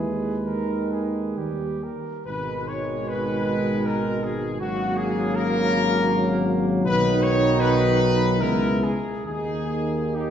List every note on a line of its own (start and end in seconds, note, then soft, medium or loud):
0.00 1.37 D#2 medium
0.00 0.11 E3 medium
0.00 1.40 G#3 medium
0.00 0.35 G#4 medium
0.00 1.80 B4 medium
0.45 1.79 D#3 medium
0.45 0.93 A#4 medium
0.92 1.39 G#4 medium
1.37 1.90 D#2 medium
1.37 1.92 G3 medium
1.37 1.85 G4 medium
1.84 2.25 A#4 medium
2.26 6.86 G#1 medium
2.26 4.56 B2 medium
2.26 4.56 D#3 medium
2.26 4.56 G#3 medium
2.26 2.64 B4 loud
2.67 3.07 C#5 medium
3.07 3.85 B4 loud
3.85 4.23 A#4 medium
4.23 4.60 G#4 medium
4.60 6.81 C#3 medium
4.60 8.42 F#3 medium
4.60 6.82 A#3 medium
4.60 4.97 F#4 loud
4.97 5.35 G#4 loud
5.35 6.48 A#4 loud
6.84 8.42 B1 medium
6.84 8.42 D#3 medium
6.84 8.42 D#4 loud
6.84 7.19 B4 loud
7.22 7.60 C#5 loud
7.60 8.40 B4 loud
8.40 8.96 C#2 medium
8.40 8.96 G#3 medium
8.40 8.96 B3 medium
8.40 8.96 E4 medium
8.40 8.83 A#4 loud
8.83 9.24 G#4 medium
9.25 10.30 D#2 medium
9.25 10.30 D#3 medium
9.25 10.30 A#3 medium
9.25 10.00 D#4 medium
9.25 10.11 G#4 loud
10.13 10.30 D#4 medium
10.13 10.30 G4 medium